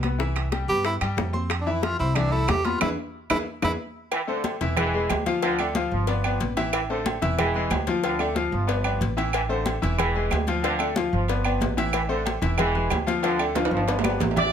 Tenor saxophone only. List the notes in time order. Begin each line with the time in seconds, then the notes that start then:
0.69 G4
0.86 E4
1.61 D4
1.72 E4
1.83 F4
1.99 E4
2.15 D4
2.32 E4
2.49 G4
2.65 F4
2.81 E4
3.30 E4
3.64 E4